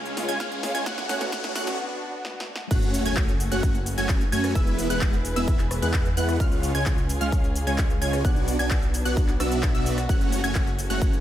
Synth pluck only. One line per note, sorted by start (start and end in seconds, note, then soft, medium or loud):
0.00 0.26 F6 medium
0.28 0.38 G#6 loud
0.40 0.72 F6 medium
0.75 0.84 G#6 loud
0.86 1.07 F#6 medium
1.09 1.31 F#6 medium
1.32 1.54 F#6 medium
1.55 1.77 F#6 medium
2.71 3.03 F#6 medium
3.06 3.30 G#6 loud
3.52 3.76 F#6 medium
3.98 4.22 G#6 medium
4.32 4.53 G#6 loud
4.55 4.87 E6 medium
4.90 5.15 F#6 loud
5.36 5.61 E6 loud
5.82 6.07 F#6 medium
6.17 6.37 F#6 loud
6.40 6.72 F6 medium
6.75 6.99 G#6 loud
7.21 7.45 F6 loud
7.67 7.91 G#6 medium
8.02 8.22 G#6 loud
8.25 8.57 F#6 medium
8.59 8.84 G#6 loud
9.05 9.30 F#6 loud
9.40 9.72 E6 medium
9.75 9.99 E6 medium
10.09 10.41 F#6 medium
10.44 10.68 G#6 loud
10.90 11.14 F#6 medium